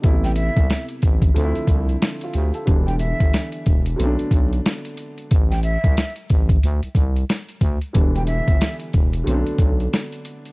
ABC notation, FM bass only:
X:1
M:4/4
L:1/16
Q:"Swing 16ths" 1/4=91
K:Am
V:1 name="FM bass" clef=bass
A,,,3 C,, z2 A,,,2 D,, C,, C,,2 z2 D,, z | E,,,3 G,,, z2 E,,,2 B,,, B,,, B,,,2 z4 | A,,,3 C,, z2 A,,,2 D,, C,, C,,2 z2 D,, z | E,,,3 G,,, z2 E,,,2 B,,, B,,, B,,,2 z4 |]